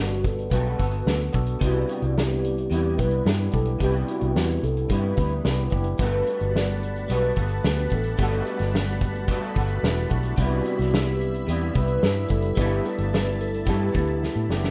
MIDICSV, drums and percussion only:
0, 0, Header, 1, 2, 480
1, 0, Start_track
1, 0, Key_signature, 1, "major"
1, 0, Tempo, 547945
1, 1413, Time_signature, 4, 2, 24, 8
1, 12883, End_track
2, 0, Start_track
2, 0, Title_t, "Drums"
2, 91, Note_on_c, 9, 42, 37
2, 179, Note_off_c, 9, 42, 0
2, 214, Note_on_c, 9, 36, 96
2, 219, Note_on_c, 9, 42, 56
2, 302, Note_off_c, 9, 36, 0
2, 306, Note_off_c, 9, 42, 0
2, 337, Note_on_c, 9, 42, 36
2, 425, Note_off_c, 9, 42, 0
2, 451, Note_on_c, 9, 36, 93
2, 460, Note_on_c, 9, 42, 88
2, 538, Note_off_c, 9, 36, 0
2, 547, Note_off_c, 9, 42, 0
2, 691, Note_on_c, 9, 42, 68
2, 697, Note_on_c, 9, 36, 84
2, 779, Note_off_c, 9, 42, 0
2, 784, Note_off_c, 9, 36, 0
2, 799, Note_on_c, 9, 42, 43
2, 887, Note_off_c, 9, 42, 0
2, 938, Note_on_c, 9, 38, 105
2, 1026, Note_off_c, 9, 38, 0
2, 1159, Note_on_c, 9, 42, 60
2, 1176, Note_on_c, 9, 36, 85
2, 1247, Note_off_c, 9, 42, 0
2, 1264, Note_off_c, 9, 36, 0
2, 1282, Note_on_c, 9, 42, 50
2, 1370, Note_off_c, 9, 42, 0
2, 1412, Note_on_c, 9, 42, 85
2, 1413, Note_on_c, 9, 36, 100
2, 1500, Note_off_c, 9, 42, 0
2, 1501, Note_off_c, 9, 36, 0
2, 1656, Note_on_c, 9, 42, 60
2, 1743, Note_off_c, 9, 42, 0
2, 1771, Note_on_c, 9, 42, 45
2, 1859, Note_off_c, 9, 42, 0
2, 1907, Note_on_c, 9, 38, 103
2, 1995, Note_off_c, 9, 38, 0
2, 2142, Note_on_c, 9, 42, 59
2, 2230, Note_off_c, 9, 42, 0
2, 2260, Note_on_c, 9, 42, 40
2, 2347, Note_off_c, 9, 42, 0
2, 2384, Note_on_c, 9, 42, 87
2, 2471, Note_off_c, 9, 42, 0
2, 2612, Note_on_c, 9, 42, 69
2, 2619, Note_on_c, 9, 36, 85
2, 2700, Note_off_c, 9, 42, 0
2, 2707, Note_off_c, 9, 36, 0
2, 2723, Note_on_c, 9, 42, 42
2, 2810, Note_off_c, 9, 42, 0
2, 2860, Note_on_c, 9, 38, 110
2, 2947, Note_off_c, 9, 38, 0
2, 3080, Note_on_c, 9, 42, 54
2, 3098, Note_on_c, 9, 36, 80
2, 3168, Note_off_c, 9, 42, 0
2, 3186, Note_off_c, 9, 36, 0
2, 3201, Note_on_c, 9, 42, 52
2, 3289, Note_off_c, 9, 42, 0
2, 3329, Note_on_c, 9, 42, 85
2, 3333, Note_on_c, 9, 36, 93
2, 3416, Note_off_c, 9, 42, 0
2, 3420, Note_off_c, 9, 36, 0
2, 3447, Note_on_c, 9, 42, 34
2, 3534, Note_off_c, 9, 42, 0
2, 3574, Note_on_c, 9, 42, 62
2, 3662, Note_off_c, 9, 42, 0
2, 3688, Note_on_c, 9, 42, 47
2, 3776, Note_off_c, 9, 42, 0
2, 3822, Note_on_c, 9, 38, 109
2, 3910, Note_off_c, 9, 38, 0
2, 4059, Note_on_c, 9, 42, 58
2, 4147, Note_off_c, 9, 42, 0
2, 4177, Note_on_c, 9, 42, 37
2, 4264, Note_off_c, 9, 42, 0
2, 4291, Note_on_c, 9, 36, 99
2, 4296, Note_on_c, 9, 42, 91
2, 4378, Note_off_c, 9, 36, 0
2, 4384, Note_off_c, 9, 42, 0
2, 4528, Note_on_c, 9, 42, 63
2, 4535, Note_on_c, 9, 36, 88
2, 4615, Note_off_c, 9, 42, 0
2, 4623, Note_off_c, 9, 36, 0
2, 4635, Note_on_c, 9, 42, 45
2, 4722, Note_off_c, 9, 42, 0
2, 4773, Note_on_c, 9, 38, 108
2, 4860, Note_off_c, 9, 38, 0
2, 4992, Note_on_c, 9, 42, 56
2, 5013, Note_on_c, 9, 36, 84
2, 5079, Note_off_c, 9, 42, 0
2, 5101, Note_off_c, 9, 36, 0
2, 5115, Note_on_c, 9, 42, 47
2, 5203, Note_off_c, 9, 42, 0
2, 5245, Note_on_c, 9, 42, 89
2, 5249, Note_on_c, 9, 36, 96
2, 5333, Note_off_c, 9, 42, 0
2, 5337, Note_off_c, 9, 36, 0
2, 5365, Note_on_c, 9, 42, 36
2, 5452, Note_off_c, 9, 42, 0
2, 5490, Note_on_c, 9, 42, 56
2, 5578, Note_off_c, 9, 42, 0
2, 5607, Note_on_c, 9, 42, 46
2, 5694, Note_off_c, 9, 42, 0
2, 5746, Note_on_c, 9, 38, 102
2, 5833, Note_off_c, 9, 38, 0
2, 5980, Note_on_c, 9, 42, 59
2, 6068, Note_off_c, 9, 42, 0
2, 6095, Note_on_c, 9, 42, 39
2, 6183, Note_off_c, 9, 42, 0
2, 6216, Note_on_c, 9, 42, 88
2, 6304, Note_off_c, 9, 42, 0
2, 6447, Note_on_c, 9, 42, 68
2, 6456, Note_on_c, 9, 36, 84
2, 6535, Note_off_c, 9, 42, 0
2, 6543, Note_off_c, 9, 36, 0
2, 6561, Note_on_c, 9, 42, 44
2, 6649, Note_off_c, 9, 42, 0
2, 6696, Note_on_c, 9, 38, 103
2, 6783, Note_off_c, 9, 38, 0
2, 6818, Note_on_c, 9, 42, 34
2, 6905, Note_off_c, 9, 42, 0
2, 6918, Note_on_c, 9, 42, 61
2, 6936, Note_on_c, 9, 36, 81
2, 7006, Note_off_c, 9, 42, 0
2, 7023, Note_off_c, 9, 36, 0
2, 7040, Note_on_c, 9, 42, 49
2, 7128, Note_off_c, 9, 42, 0
2, 7169, Note_on_c, 9, 42, 82
2, 7172, Note_on_c, 9, 36, 95
2, 7257, Note_off_c, 9, 42, 0
2, 7260, Note_off_c, 9, 36, 0
2, 7414, Note_on_c, 9, 42, 57
2, 7501, Note_off_c, 9, 42, 0
2, 7526, Note_on_c, 9, 42, 46
2, 7545, Note_on_c, 9, 38, 34
2, 7613, Note_off_c, 9, 42, 0
2, 7632, Note_off_c, 9, 38, 0
2, 7666, Note_on_c, 9, 38, 103
2, 7753, Note_off_c, 9, 38, 0
2, 7774, Note_on_c, 9, 42, 36
2, 7861, Note_off_c, 9, 42, 0
2, 7896, Note_on_c, 9, 36, 92
2, 7901, Note_on_c, 9, 42, 58
2, 7983, Note_off_c, 9, 36, 0
2, 7989, Note_off_c, 9, 42, 0
2, 8016, Note_on_c, 9, 42, 39
2, 8104, Note_off_c, 9, 42, 0
2, 8131, Note_on_c, 9, 36, 100
2, 8137, Note_on_c, 9, 42, 89
2, 8218, Note_off_c, 9, 36, 0
2, 8224, Note_off_c, 9, 42, 0
2, 8369, Note_on_c, 9, 42, 66
2, 8376, Note_on_c, 9, 36, 90
2, 8457, Note_off_c, 9, 42, 0
2, 8464, Note_off_c, 9, 36, 0
2, 8478, Note_on_c, 9, 42, 45
2, 8566, Note_off_c, 9, 42, 0
2, 8620, Note_on_c, 9, 38, 109
2, 8708, Note_off_c, 9, 38, 0
2, 8843, Note_on_c, 9, 42, 58
2, 8858, Note_on_c, 9, 36, 84
2, 8930, Note_off_c, 9, 42, 0
2, 8945, Note_off_c, 9, 36, 0
2, 8960, Note_on_c, 9, 42, 51
2, 9048, Note_off_c, 9, 42, 0
2, 9087, Note_on_c, 9, 42, 86
2, 9092, Note_on_c, 9, 36, 100
2, 9175, Note_off_c, 9, 42, 0
2, 9179, Note_off_c, 9, 36, 0
2, 9207, Note_on_c, 9, 42, 32
2, 9295, Note_off_c, 9, 42, 0
2, 9333, Note_on_c, 9, 42, 61
2, 9421, Note_off_c, 9, 42, 0
2, 9446, Note_on_c, 9, 42, 48
2, 9465, Note_on_c, 9, 38, 36
2, 9533, Note_off_c, 9, 42, 0
2, 9552, Note_off_c, 9, 38, 0
2, 9582, Note_on_c, 9, 38, 105
2, 9670, Note_off_c, 9, 38, 0
2, 9818, Note_on_c, 9, 42, 55
2, 9906, Note_off_c, 9, 42, 0
2, 9936, Note_on_c, 9, 42, 41
2, 10024, Note_off_c, 9, 42, 0
2, 10061, Note_on_c, 9, 42, 90
2, 10148, Note_off_c, 9, 42, 0
2, 10290, Note_on_c, 9, 42, 69
2, 10297, Note_on_c, 9, 36, 88
2, 10378, Note_off_c, 9, 42, 0
2, 10385, Note_off_c, 9, 36, 0
2, 10404, Note_on_c, 9, 42, 43
2, 10491, Note_off_c, 9, 42, 0
2, 10537, Note_on_c, 9, 38, 103
2, 10625, Note_off_c, 9, 38, 0
2, 10760, Note_on_c, 9, 42, 60
2, 10777, Note_on_c, 9, 36, 81
2, 10848, Note_off_c, 9, 42, 0
2, 10865, Note_off_c, 9, 36, 0
2, 10882, Note_on_c, 9, 42, 51
2, 10969, Note_off_c, 9, 42, 0
2, 11014, Note_on_c, 9, 36, 104
2, 11014, Note_on_c, 9, 42, 88
2, 11101, Note_off_c, 9, 36, 0
2, 11102, Note_off_c, 9, 42, 0
2, 11257, Note_on_c, 9, 42, 60
2, 11345, Note_off_c, 9, 42, 0
2, 11373, Note_on_c, 9, 42, 46
2, 11461, Note_off_c, 9, 42, 0
2, 11512, Note_on_c, 9, 38, 106
2, 11599, Note_off_c, 9, 38, 0
2, 11743, Note_on_c, 9, 42, 62
2, 11831, Note_off_c, 9, 42, 0
2, 11863, Note_on_c, 9, 42, 38
2, 11951, Note_off_c, 9, 42, 0
2, 11973, Note_on_c, 9, 36, 99
2, 11983, Note_on_c, 9, 42, 86
2, 12060, Note_off_c, 9, 36, 0
2, 12071, Note_off_c, 9, 42, 0
2, 12214, Note_on_c, 9, 42, 66
2, 12219, Note_on_c, 9, 36, 93
2, 12301, Note_off_c, 9, 42, 0
2, 12307, Note_off_c, 9, 36, 0
2, 12325, Note_on_c, 9, 42, 45
2, 12413, Note_off_c, 9, 42, 0
2, 12469, Note_on_c, 9, 38, 54
2, 12556, Note_off_c, 9, 38, 0
2, 12706, Note_on_c, 9, 38, 85
2, 12794, Note_off_c, 9, 38, 0
2, 12827, Note_on_c, 9, 38, 82
2, 12883, Note_off_c, 9, 38, 0
2, 12883, End_track
0, 0, End_of_file